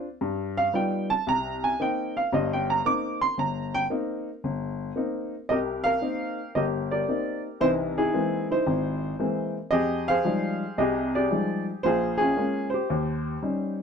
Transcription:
0.21 0.67 G2 medium
0.57 0.73 F5 loud
0.74 1.11 G3 medium
0.74 1.11 B3 soft
0.74 1.11 D#4 soft
0.74 1.11 F4 medium
0.74 1.09 G5 medium
1.10 1.26 A5 loud
1.27 1.72 C2 medium
1.27 1.62 A#5 loud
1.64 1.79 G#5 medium
1.80 2.17 A#3 medium
1.80 2.17 C4 soft
1.80 2.17 D#4 medium
1.80 2.15 G5 medium
2.17 2.32 F5 medium
2.32 2.78 G1 medium
2.32 2.78 G2 medium
2.32 2.50 D#5 medium
2.53 2.68 G5 medium
2.70 2.85 A#5 medium
2.85 3.22 A#3 medium
2.85 3.23 C4 soft
2.85 3.23 D#4 medium
2.85 3.20 D6 loud
3.21 3.37 C6 loud
3.38 3.83 G1 medium
3.38 3.73 A#5 medium
3.74 3.84 G5 loud
3.90 4.28 A#3 medium
3.90 4.28 C4 soft
3.90 4.28 D#4 medium
4.44 4.89 G1 medium
4.96 5.33 A#3 medium
4.96 5.34 C4 soft
4.96 5.34 D#4 medium
5.49 5.95 C2 medium
5.49 6.51 G4 medium
5.49 5.84 A#4 medium
5.49 5.57 D#5 medium
5.84 6.55 A#4 medium
5.84 6.50 F5 loud
6.02 6.39 A#3 medium
6.02 6.39 C4 soft
6.02 6.39 D#4 medium
6.55 7.01 G1 medium
6.55 6.91 G4 medium
6.55 6.91 A#4 medium
6.55 6.63 D#5 medium
6.91 7.57 G4 medium
6.91 7.57 A#4 medium
6.91 7.40 D5 medium
7.08 7.45 A#3 medium
7.08 7.45 C4 soft
7.08 7.46 D#4 medium
7.60 8.06 C2 medium
7.60 8.06 E3 medium
7.60 7.97 D#4 medium
7.60 7.97 E4 medium
7.60 7.69 C5 loud
7.98 8.50 D#4 medium
7.98 8.49 E4 medium
7.98 8.46 G#4 medium
8.14 8.51 E3 medium
8.14 8.51 G#3 soft
8.14 8.51 A#3 soft
8.14 8.51 C4 medium
8.51 9.52 D#4 medium
8.51 9.51 E4 medium
8.51 9.52 C5 medium
8.67 9.12 G#1 medium
9.19 9.56 E3 medium
9.19 9.57 G#3 soft
9.19 9.57 A#3 soft
9.19 9.57 C4 medium
9.71 10.17 F2 medium
9.71 10.74 G4 medium
9.71 10.08 G#4 medium
9.71 10.04 D#5 loud
10.08 10.78 G#4 medium
10.08 11.10 C5 medium
10.08 10.79 F5 loud
10.25 10.62 F3 medium
10.25 10.62 G3 medium
10.25 10.62 G#3 soft
10.25 10.63 D#4 medium
10.78 11.24 C2 medium
10.78 11.23 C3 medium
10.78 11.15 G4 medium
10.78 11.15 G#4 medium
10.78 11.15 D#5 medium
11.15 11.80 G4 medium
11.15 11.80 G#4 medium
11.15 11.63 D5 medium
11.31 11.68 F3 medium
11.31 11.68 G3 soft
11.31 11.68 G#3 soft
11.31 11.68 D#4 medium
11.83 12.30 A#1 medium
11.83 12.19 F4 medium
11.83 12.16 G#4 medium
11.83 12.20 C5 loud
12.18 12.36 C#4 medium
12.18 12.85 F4 medium
12.18 12.67 G#4 loud
12.37 12.74 G#3 medium
12.37 12.74 A#3 soft
12.37 12.74 C#4 medium
12.70 13.72 C5 medium
12.74 13.74 G4 medium
12.90 13.35 D#2 medium
13.42 13.79 G3 soft
13.42 13.80 C#4 soft
13.42 13.80 D#4 medium

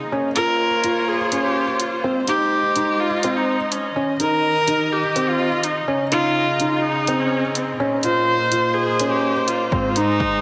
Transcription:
0.00 0.11 C#3 medium
0.00 0.88 D#4 medium
0.00 0.81 G#4 medium
0.00 0.88 D#5 medium
0.11 2.80 A#3 medium
0.11 0.27 C#4 medium
0.17 2.81 F4 medium
0.33 0.67 F4 medium
0.33 1.10 A#4 loud
0.33 4.73 C5 medium
0.33 2.04 C#5 medium
0.33 closed hi-hat medium
0.84 1.15 F4 medium
0.84 closed hi-hat medium
1.08 1.46 G#4 loud
1.32 1.63 C#4 medium
1.32 closed hi-hat medium
1.44 1.82 G4 medium
1.80 2.04 F4 medium
1.80 closed hi-hat medium
2.04 3.96 G#3 medium
2.04 2.19 C4 medium
2.11 3.96 D#4 medium
2.27 2.58 D#4 medium
2.27 3.01 G4 loud
2.27 8.57 D#5 medium
2.27 closed hi-hat medium
2.76 3.07 D#4 medium
2.76 closed hi-hat medium
3.00 3.38 F4 loud
3.23 3.55 C4 medium
3.23 closed hi-hat medium
3.36 3.74 D#4 medium
3.72 3.96 C#4 medium
3.72 closed hi-hat medium
3.96 5.88 D#3 medium
3.96 4.11 C#4 medium
4.20 4.51 D#4 medium
4.20 9.72 D#4 medium
4.20 4.94 A#4 loud
4.20 closed hi-hat medium
4.66 4.98 D#4 medium
4.66 5.88 G4 medium
4.66 closed hi-hat medium
4.92 5.30 G4 loud
5.16 5.47 C4 medium
5.16 closed hi-hat medium
5.29 5.66 F4 loud
5.63 5.88 D#4 medium
5.63 closed hi-hat medium
5.88 7.80 C#3 medium
5.88 6.03 C#4 medium
6.12 6.43 D#4 medium
6.12 6.77 F4 loud
6.12 closed hi-hat medium
6.27 8.57 G#4 medium
6.60 6.91 D#4 medium
6.60 closed hi-hat medium
6.77 6.84 F4 medium
6.83 7.21 D#4 loud
7.07 7.39 C4 medium
7.07 closed hi-hat medium
7.19 7.57 C#4 medium
7.55 7.80 C4 medium
7.55 closed hi-hat medium
7.79 9.72 A#2 medium
7.79 7.95 C#4 loud
7.95 10.41 C5 medium
8.03 8.35 F4 medium
8.03 8.75 C5 loud
8.03 closed hi-hat medium
8.13 10.41 A#3 medium
8.52 8.82 F4 medium
8.52 closed hi-hat medium
8.74 9.12 G#4 loud
8.99 9.31 C#4 medium
8.99 closed hi-hat medium
9.11 9.49 G4 medium
9.48 9.72 F4 medium
9.48 closed hi-hat medium
9.72 10.41 G#2 loud
9.72 10.41 G#3 medium
9.72 9.88 C4 medium
9.72 kick loud
9.89 9.97 F4 medium
9.95 10.41 D#4 loud
9.95 10.27 D#4 medium
9.95 10.41 G#4 medium
9.95 closed hi-hat medium
10.04 10.41 D#5 medium
10.20 kick loud

